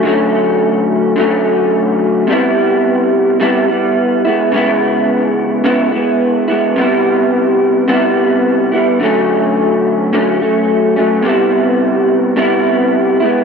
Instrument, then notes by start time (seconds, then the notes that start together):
clean electric guitar
0.03 D3 F#3 A3
0.08 C#4
1.16 D3 F#3 A3
1.21 C#4
2.27 C3 G3 B3
2.32 E4
3.40 C3 G3 B3 E4
3.68 G3 B3 E4
4.25 G#3 B3 E4
4.52 C#3 G#3 B3
4.57 E4
5.64 C#3 G#3 B3 E4
5.92 G#3 B3 E4
6.48 G#3 B3 E4
6.76 C3 G3 B3
6.81 E4
7.88 C3 G3 B3 E4
8.72 G3 B3 E4
9.00 D3 F#3 A3
9.05 C#4
10.13 D3 F#3 A3 C#4
10.40 F#3 A3 C#4
10.96 F#3 A3 C#4
11.22 C3 G3 B3
11.28 E4
12.36 C3 G3 B3 E4
13.20 G#3 B3 E4